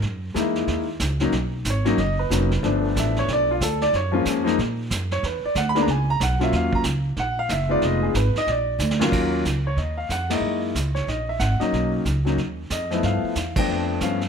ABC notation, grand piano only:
X:1
M:4/4
L:1/16
Q:"Swing" 1/4=184
K:Ebm
V:1 name="Grand piano"
z16 | z4 ^c4 ^d2 =B6 | z4 _f2 d2 =d2 =F2 =A2 d2 | d2 F2 z8 z2 d2 |
=B2 =d2 (3g2 =b2 ^a2 ^g2 a2 _g2 =e2 | f2 b2 z4 g2 f2 _f2 =d2 | e2 A2 c2 e2 =d6- d z | z6 d2 e2 f2 g2 e2- |
e2 z4 d2 e2 _f2 g2 e2- | e2 z8 z2 ^d4 | f6 =g6 f2 z2 |]
V:2 name="Grand piano"
z4 [A,B,E_F]6 z4 [G,B,DE]2 | z6 [^F,^A,^C^D]2 z4 [F,A,CD]2 z2 | [F,=A,=B,=D]8- [F,A,B,D]2 z6 | z2 [F,A,B,D]4 [F,A,B,E]2 z8 |
z6 [^G,^A,=B,=D]2 z6 [_G,A,_DF]2- | [G,^A,DF]4 z8 z2 [_A,CEF]2- | [A,CEF]4 z8 z2 [E,,G,B,DF]2- | [E,,G,B,DF]4 z8 z2 [A,B,E_F]2- |
[A,B,E_F]4 z8 z2 [G,B,DE]2- | [G,B,DE]4 z2 [^F,^A,^C^D]2 z6 [=F,=A,=B,_F]2- | [F,=A,=B,_F]4 z2 [=F,A,B,=D]6 [F,A,B,_D]2 z2 |]